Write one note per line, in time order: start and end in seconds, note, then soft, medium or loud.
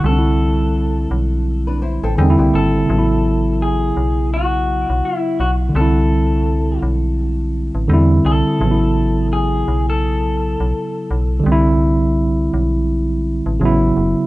0.00 1.07 C2 loud
0.00 2.12 D3 medium
0.04 2.14 G3 medium
0.04 2.16 C4 medium
0.04 1.08 A4 loud
0.12 0.15 D4 medium
0.19 2.21 E4 medium
1.11 1.99 B1 medium
1.67 1.82 D4 medium
1.67 1.81 B4 medium
1.82 2.02 E4 medium
1.82 2.02 C5 medium
2.03 2.16 A1 medium
2.03 2.17 C4 medium
2.03 2.17 A4 medium
2.18 2.36 E2 loud
2.18 2.89 D3 medium
2.18 2.90 G3 medium
2.18 2.38 C4 medium
2.18 2.38 G#4 medium
2.22 2.91 C4 medium
2.22 2.28 D#4 medium
2.30 2.95 E4 medium
2.38 2.52 C2 medium
2.38 2.87 A#3 medium
2.38 2.86 G4 medium
2.54 2.85 G#1 medium
2.54 3.62 A4 loud
2.86 3.92 A1 loud
2.86 5.69 C#3 medium
2.90 5.71 F#3 medium
2.95 5.74 B3 medium
2.95 5.75 E4 medium
3.62 4.33 G#4 medium
3.97 4.85 B1 medium
4.34 5.06 F#4 medium
4.89 5.02 B1 medium
5.05 5.38 E4 medium
5.40 5.71 B1 medium
5.40 5.50 F#4 medium
5.69 7.82 D3 medium
5.69 7.84 G3 medium
5.75 6.78 C2 loud
5.75 7.86 C4 medium
5.75 6.79 A4 loud
5.81 7.88 E4 medium
6.83 7.71 B1 medium
7.75 7.87 A1 medium
7.88 8.20 E2 loud
7.88 8.60 D3 medium
7.88 8.61 G3 medium
7.92 8.62 C4 medium
7.92 8.63 E4 medium
8.25 8.43 C2 medium
8.25 9.29 A4 loud
8.59 9.64 A1 loud
8.59 11.42 C#3 medium
8.64 11.44 F#3 medium
8.64 11.46 B3 medium
8.71 11.48 E4 medium
9.33 9.89 G#4 medium
9.68 10.56 B1 medium
9.90 13.57 A4 medium
10.60 10.73 B1 medium
11.11 11.42 B1 medium
11.40 13.53 D3 medium
11.40 13.55 G3 medium
11.46 12.49 C2 loud
11.46 13.57 C4 medium
11.52 13.59 E4 loud
12.54 13.42 B1 medium
13.46 13.59 A1 medium
13.60 13.92 A1 loud
13.60 14.27 C#3 medium
13.60 14.27 F#3 medium
13.60 14.27 B3 medium
13.65 14.27 E4 medium
13.97 14.15 F#1 medium